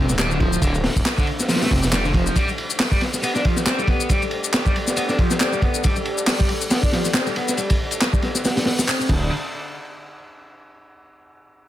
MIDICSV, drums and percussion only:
0, 0, Header, 1, 2, 480
1, 0, Start_track
1, 0, Tempo, 434783
1, 684, Time_signature, 4, 2, 24, 8
1, 12897, End_track
2, 0, Start_track
2, 0, Title_t, "Drums"
2, 103, Note_on_c, 9, 38, 43
2, 103, Note_on_c, 9, 82, 65
2, 198, Note_on_c, 9, 51, 79
2, 206, Note_off_c, 9, 82, 0
2, 206, Note_on_c, 9, 39, 114
2, 206, Note_on_c, 9, 82, 56
2, 208, Note_off_c, 9, 38, 0
2, 208, Note_on_c, 9, 38, 117
2, 308, Note_off_c, 9, 51, 0
2, 317, Note_off_c, 9, 39, 0
2, 317, Note_off_c, 9, 82, 0
2, 318, Note_off_c, 9, 38, 0
2, 342, Note_on_c, 9, 82, 31
2, 445, Note_on_c, 9, 36, 90
2, 445, Note_on_c, 9, 51, 64
2, 453, Note_off_c, 9, 82, 0
2, 555, Note_off_c, 9, 51, 0
2, 556, Note_off_c, 9, 36, 0
2, 583, Note_on_c, 9, 82, 65
2, 681, Note_on_c, 9, 36, 99
2, 685, Note_on_c, 9, 51, 85
2, 687, Note_off_c, 9, 82, 0
2, 687, Note_on_c, 9, 82, 53
2, 792, Note_off_c, 9, 36, 0
2, 796, Note_off_c, 9, 51, 0
2, 798, Note_off_c, 9, 82, 0
2, 818, Note_on_c, 9, 51, 46
2, 824, Note_on_c, 9, 82, 30
2, 925, Note_on_c, 9, 38, 104
2, 925, Note_on_c, 9, 46, 70
2, 928, Note_off_c, 9, 51, 0
2, 934, Note_off_c, 9, 82, 0
2, 1035, Note_off_c, 9, 38, 0
2, 1036, Note_off_c, 9, 46, 0
2, 1060, Note_on_c, 9, 36, 86
2, 1065, Note_on_c, 9, 82, 62
2, 1162, Note_on_c, 9, 38, 118
2, 1168, Note_off_c, 9, 82, 0
2, 1168, Note_on_c, 9, 39, 108
2, 1168, Note_on_c, 9, 82, 53
2, 1170, Note_off_c, 9, 36, 0
2, 1170, Note_on_c, 9, 51, 90
2, 1272, Note_off_c, 9, 38, 0
2, 1279, Note_off_c, 9, 39, 0
2, 1279, Note_off_c, 9, 82, 0
2, 1281, Note_off_c, 9, 51, 0
2, 1302, Note_on_c, 9, 36, 100
2, 1303, Note_on_c, 9, 82, 30
2, 1403, Note_on_c, 9, 51, 61
2, 1412, Note_off_c, 9, 36, 0
2, 1413, Note_off_c, 9, 82, 0
2, 1513, Note_off_c, 9, 51, 0
2, 1542, Note_on_c, 9, 82, 62
2, 1544, Note_on_c, 9, 38, 45
2, 1639, Note_off_c, 9, 38, 0
2, 1639, Note_on_c, 9, 38, 90
2, 1641, Note_on_c, 9, 46, 65
2, 1646, Note_off_c, 9, 82, 0
2, 1646, Note_on_c, 9, 82, 56
2, 1715, Note_off_c, 9, 46, 0
2, 1715, Note_on_c, 9, 46, 59
2, 1720, Note_off_c, 9, 38, 0
2, 1720, Note_on_c, 9, 38, 78
2, 1757, Note_off_c, 9, 82, 0
2, 1782, Note_on_c, 9, 82, 29
2, 1785, Note_off_c, 9, 38, 0
2, 1785, Note_off_c, 9, 46, 0
2, 1785, Note_on_c, 9, 38, 85
2, 1785, Note_on_c, 9, 46, 66
2, 1832, Note_off_c, 9, 38, 0
2, 1832, Note_on_c, 9, 38, 87
2, 1835, Note_off_c, 9, 46, 0
2, 1835, Note_on_c, 9, 46, 60
2, 1886, Note_on_c, 9, 36, 87
2, 1888, Note_on_c, 9, 51, 67
2, 1893, Note_off_c, 9, 82, 0
2, 1942, Note_off_c, 9, 38, 0
2, 1945, Note_off_c, 9, 46, 0
2, 1996, Note_off_c, 9, 36, 0
2, 1999, Note_off_c, 9, 51, 0
2, 2021, Note_on_c, 9, 82, 64
2, 2026, Note_on_c, 9, 38, 54
2, 2117, Note_on_c, 9, 51, 82
2, 2125, Note_off_c, 9, 38, 0
2, 2125, Note_off_c, 9, 82, 0
2, 2125, Note_on_c, 9, 38, 120
2, 2125, Note_on_c, 9, 39, 114
2, 2125, Note_on_c, 9, 82, 55
2, 2227, Note_off_c, 9, 51, 0
2, 2236, Note_off_c, 9, 38, 0
2, 2236, Note_off_c, 9, 39, 0
2, 2236, Note_off_c, 9, 82, 0
2, 2261, Note_on_c, 9, 82, 31
2, 2360, Note_on_c, 9, 36, 99
2, 2365, Note_on_c, 9, 51, 74
2, 2371, Note_off_c, 9, 82, 0
2, 2470, Note_off_c, 9, 36, 0
2, 2475, Note_off_c, 9, 51, 0
2, 2502, Note_on_c, 9, 82, 64
2, 2602, Note_on_c, 9, 36, 107
2, 2606, Note_off_c, 9, 82, 0
2, 2606, Note_on_c, 9, 82, 49
2, 2607, Note_on_c, 9, 51, 87
2, 2713, Note_off_c, 9, 36, 0
2, 2716, Note_off_c, 9, 82, 0
2, 2718, Note_off_c, 9, 51, 0
2, 2742, Note_on_c, 9, 82, 29
2, 2847, Note_on_c, 9, 51, 66
2, 2853, Note_off_c, 9, 82, 0
2, 2958, Note_off_c, 9, 51, 0
2, 2982, Note_on_c, 9, 82, 60
2, 3078, Note_on_c, 9, 46, 79
2, 3087, Note_off_c, 9, 82, 0
2, 3087, Note_on_c, 9, 38, 122
2, 3087, Note_on_c, 9, 39, 103
2, 3087, Note_on_c, 9, 82, 51
2, 3188, Note_off_c, 9, 46, 0
2, 3197, Note_off_c, 9, 38, 0
2, 3197, Note_off_c, 9, 39, 0
2, 3197, Note_off_c, 9, 82, 0
2, 3217, Note_on_c, 9, 36, 91
2, 3223, Note_on_c, 9, 82, 28
2, 3322, Note_on_c, 9, 51, 70
2, 3328, Note_off_c, 9, 36, 0
2, 3330, Note_on_c, 9, 38, 48
2, 3334, Note_off_c, 9, 82, 0
2, 3433, Note_off_c, 9, 51, 0
2, 3441, Note_off_c, 9, 38, 0
2, 3461, Note_on_c, 9, 82, 64
2, 3462, Note_on_c, 9, 38, 39
2, 3566, Note_off_c, 9, 82, 0
2, 3566, Note_on_c, 9, 82, 54
2, 3571, Note_on_c, 9, 51, 93
2, 3572, Note_off_c, 9, 38, 0
2, 3677, Note_off_c, 9, 82, 0
2, 3681, Note_off_c, 9, 51, 0
2, 3703, Note_on_c, 9, 38, 50
2, 3703, Note_on_c, 9, 82, 29
2, 3805, Note_on_c, 9, 51, 74
2, 3809, Note_on_c, 9, 36, 92
2, 3813, Note_off_c, 9, 38, 0
2, 3813, Note_off_c, 9, 82, 0
2, 3916, Note_off_c, 9, 51, 0
2, 3919, Note_off_c, 9, 36, 0
2, 3932, Note_on_c, 9, 38, 45
2, 3942, Note_on_c, 9, 82, 62
2, 4043, Note_off_c, 9, 38, 0
2, 4043, Note_on_c, 9, 38, 114
2, 4044, Note_on_c, 9, 51, 80
2, 4046, Note_off_c, 9, 82, 0
2, 4046, Note_on_c, 9, 39, 108
2, 4046, Note_on_c, 9, 82, 54
2, 4154, Note_off_c, 9, 38, 0
2, 4154, Note_off_c, 9, 51, 0
2, 4156, Note_off_c, 9, 39, 0
2, 4156, Note_off_c, 9, 82, 0
2, 4183, Note_on_c, 9, 82, 30
2, 4278, Note_on_c, 9, 36, 105
2, 4281, Note_on_c, 9, 51, 61
2, 4293, Note_off_c, 9, 82, 0
2, 4388, Note_off_c, 9, 36, 0
2, 4391, Note_off_c, 9, 51, 0
2, 4421, Note_on_c, 9, 82, 61
2, 4521, Note_on_c, 9, 36, 99
2, 4521, Note_on_c, 9, 51, 79
2, 4525, Note_off_c, 9, 82, 0
2, 4525, Note_on_c, 9, 82, 51
2, 4631, Note_off_c, 9, 51, 0
2, 4632, Note_off_c, 9, 36, 0
2, 4635, Note_off_c, 9, 82, 0
2, 4656, Note_on_c, 9, 51, 43
2, 4661, Note_on_c, 9, 82, 29
2, 4757, Note_off_c, 9, 51, 0
2, 4757, Note_on_c, 9, 51, 66
2, 4772, Note_off_c, 9, 82, 0
2, 4868, Note_off_c, 9, 51, 0
2, 4902, Note_on_c, 9, 82, 57
2, 5005, Note_on_c, 9, 51, 96
2, 5007, Note_off_c, 9, 82, 0
2, 5007, Note_on_c, 9, 39, 98
2, 5007, Note_on_c, 9, 82, 49
2, 5010, Note_on_c, 9, 38, 127
2, 5116, Note_off_c, 9, 51, 0
2, 5117, Note_off_c, 9, 39, 0
2, 5117, Note_off_c, 9, 82, 0
2, 5121, Note_off_c, 9, 38, 0
2, 5141, Note_on_c, 9, 82, 30
2, 5143, Note_on_c, 9, 36, 94
2, 5251, Note_on_c, 9, 51, 72
2, 5252, Note_off_c, 9, 82, 0
2, 5253, Note_off_c, 9, 36, 0
2, 5361, Note_off_c, 9, 51, 0
2, 5379, Note_on_c, 9, 38, 50
2, 5381, Note_on_c, 9, 82, 63
2, 5484, Note_off_c, 9, 82, 0
2, 5484, Note_on_c, 9, 51, 94
2, 5484, Note_on_c, 9, 82, 52
2, 5489, Note_off_c, 9, 38, 0
2, 5595, Note_off_c, 9, 51, 0
2, 5595, Note_off_c, 9, 82, 0
2, 5620, Note_on_c, 9, 38, 46
2, 5620, Note_on_c, 9, 82, 30
2, 5724, Note_on_c, 9, 36, 94
2, 5725, Note_on_c, 9, 51, 69
2, 5731, Note_off_c, 9, 38, 0
2, 5731, Note_off_c, 9, 82, 0
2, 5835, Note_off_c, 9, 36, 0
2, 5836, Note_off_c, 9, 51, 0
2, 5857, Note_on_c, 9, 38, 58
2, 5860, Note_on_c, 9, 82, 61
2, 5963, Note_off_c, 9, 82, 0
2, 5963, Note_on_c, 9, 39, 109
2, 5963, Note_on_c, 9, 51, 82
2, 5963, Note_on_c, 9, 82, 51
2, 5967, Note_off_c, 9, 38, 0
2, 5967, Note_on_c, 9, 38, 109
2, 6073, Note_off_c, 9, 51, 0
2, 6074, Note_off_c, 9, 39, 0
2, 6074, Note_off_c, 9, 82, 0
2, 6077, Note_off_c, 9, 38, 0
2, 6101, Note_on_c, 9, 82, 30
2, 6203, Note_on_c, 9, 36, 86
2, 6205, Note_on_c, 9, 51, 71
2, 6211, Note_off_c, 9, 82, 0
2, 6313, Note_off_c, 9, 36, 0
2, 6315, Note_off_c, 9, 51, 0
2, 6341, Note_on_c, 9, 82, 57
2, 6445, Note_off_c, 9, 82, 0
2, 6445, Note_on_c, 9, 82, 49
2, 6447, Note_on_c, 9, 51, 82
2, 6453, Note_on_c, 9, 36, 95
2, 6555, Note_off_c, 9, 82, 0
2, 6557, Note_off_c, 9, 51, 0
2, 6563, Note_off_c, 9, 36, 0
2, 6581, Note_on_c, 9, 82, 31
2, 6683, Note_on_c, 9, 51, 66
2, 6691, Note_off_c, 9, 82, 0
2, 6794, Note_off_c, 9, 51, 0
2, 6821, Note_on_c, 9, 82, 62
2, 6921, Note_on_c, 9, 46, 84
2, 6923, Note_on_c, 9, 38, 126
2, 6924, Note_off_c, 9, 82, 0
2, 6924, Note_on_c, 9, 39, 99
2, 6924, Note_on_c, 9, 82, 52
2, 7031, Note_off_c, 9, 46, 0
2, 7034, Note_off_c, 9, 38, 0
2, 7035, Note_off_c, 9, 39, 0
2, 7035, Note_off_c, 9, 82, 0
2, 7061, Note_on_c, 9, 82, 30
2, 7068, Note_on_c, 9, 36, 105
2, 7164, Note_on_c, 9, 51, 64
2, 7172, Note_off_c, 9, 82, 0
2, 7178, Note_off_c, 9, 36, 0
2, 7274, Note_off_c, 9, 51, 0
2, 7300, Note_on_c, 9, 82, 62
2, 7399, Note_on_c, 9, 46, 80
2, 7404, Note_off_c, 9, 82, 0
2, 7404, Note_on_c, 9, 82, 54
2, 7409, Note_on_c, 9, 38, 110
2, 7509, Note_off_c, 9, 46, 0
2, 7514, Note_off_c, 9, 82, 0
2, 7520, Note_off_c, 9, 38, 0
2, 7540, Note_on_c, 9, 36, 96
2, 7540, Note_on_c, 9, 82, 30
2, 7643, Note_on_c, 9, 38, 52
2, 7650, Note_off_c, 9, 36, 0
2, 7650, Note_off_c, 9, 82, 0
2, 7654, Note_on_c, 9, 51, 63
2, 7754, Note_off_c, 9, 38, 0
2, 7764, Note_off_c, 9, 51, 0
2, 7782, Note_on_c, 9, 38, 35
2, 7782, Note_on_c, 9, 82, 64
2, 7879, Note_on_c, 9, 51, 86
2, 7882, Note_off_c, 9, 38, 0
2, 7882, Note_on_c, 9, 38, 117
2, 7886, Note_off_c, 9, 82, 0
2, 7886, Note_on_c, 9, 39, 102
2, 7886, Note_on_c, 9, 82, 53
2, 7989, Note_off_c, 9, 51, 0
2, 7993, Note_off_c, 9, 38, 0
2, 7996, Note_off_c, 9, 39, 0
2, 7996, Note_off_c, 9, 82, 0
2, 8022, Note_on_c, 9, 82, 31
2, 8125, Note_on_c, 9, 51, 77
2, 8133, Note_off_c, 9, 82, 0
2, 8235, Note_off_c, 9, 51, 0
2, 8262, Note_on_c, 9, 82, 62
2, 8266, Note_on_c, 9, 38, 40
2, 8362, Note_on_c, 9, 51, 65
2, 8366, Note_off_c, 9, 82, 0
2, 8366, Note_on_c, 9, 82, 51
2, 8377, Note_off_c, 9, 38, 0
2, 8473, Note_off_c, 9, 51, 0
2, 8476, Note_off_c, 9, 82, 0
2, 8498, Note_on_c, 9, 51, 83
2, 8503, Note_on_c, 9, 82, 31
2, 8504, Note_on_c, 9, 36, 90
2, 8608, Note_off_c, 9, 51, 0
2, 8613, Note_off_c, 9, 82, 0
2, 8615, Note_off_c, 9, 36, 0
2, 8731, Note_on_c, 9, 51, 63
2, 8743, Note_on_c, 9, 82, 67
2, 8841, Note_off_c, 9, 51, 0
2, 8843, Note_on_c, 9, 51, 84
2, 8847, Note_off_c, 9, 82, 0
2, 8847, Note_on_c, 9, 38, 110
2, 8847, Note_on_c, 9, 39, 102
2, 8847, Note_on_c, 9, 82, 54
2, 8953, Note_off_c, 9, 51, 0
2, 8957, Note_off_c, 9, 39, 0
2, 8957, Note_off_c, 9, 82, 0
2, 8958, Note_off_c, 9, 38, 0
2, 8976, Note_on_c, 9, 36, 101
2, 8982, Note_on_c, 9, 82, 32
2, 9079, Note_on_c, 9, 51, 64
2, 9084, Note_on_c, 9, 38, 49
2, 9086, Note_off_c, 9, 36, 0
2, 9092, Note_off_c, 9, 82, 0
2, 9189, Note_off_c, 9, 51, 0
2, 9194, Note_off_c, 9, 38, 0
2, 9216, Note_on_c, 9, 38, 49
2, 9222, Note_on_c, 9, 82, 68
2, 9326, Note_off_c, 9, 82, 0
2, 9326, Note_on_c, 9, 82, 54
2, 9327, Note_off_c, 9, 38, 0
2, 9328, Note_on_c, 9, 46, 66
2, 9333, Note_on_c, 9, 38, 98
2, 9437, Note_off_c, 9, 82, 0
2, 9439, Note_off_c, 9, 46, 0
2, 9443, Note_off_c, 9, 38, 0
2, 9459, Note_on_c, 9, 46, 72
2, 9462, Note_on_c, 9, 38, 96
2, 9464, Note_on_c, 9, 82, 31
2, 9556, Note_off_c, 9, 38, 0
2, 9556, Note_on_c, 9, 38, 115
2, 9566, Note_off_c, 9, 46, 0
2, 9566, Note_on_c, 9, 46, 82
2, 9574, Note_off_c, 9, 82, 0
2, 9666, Note_off_c, 9, 38, 0
2, 9677, Note_off_c, 9, 46, 0
2, 9702, Note_on_c, 9, 38, 100
2, 9702, Note_on_c, 9, 46, 65
2, 9704, Note_on_c, 9, 82, 68
2, 9793, Note_on_c, 9, 51, 57
2, 9808, Note_off_c, 9, 82, 0
2, 9808, Note_on_c, 9, 39, 101
2, 9808, Note_on_c, 9, 82, 53
2, 9812, Note_off_c, 9, 38, 0
2, 9812, Note_off_c, 9, 46, 0
2, 9904, Note_off_c, 9, 51, 0
2, 9918, Note_off_c, 9, 39, 0
2, 9918, Note_off_c, 9, 82, 0
2, 9943, Note_on_c, 9, 82, 33
2, 10036, Note_on_c, 9, 36, 115
2, 10037, Note_on_c, 9, 49, 91
2, 10054, Note_off_c, 9, 82, 0
2, 10146, Note_off_c, 9, 36, 0
2, 10147, Note_off_c, 9, 49, 0
2, 12897, End_track
0, 0, End_of_file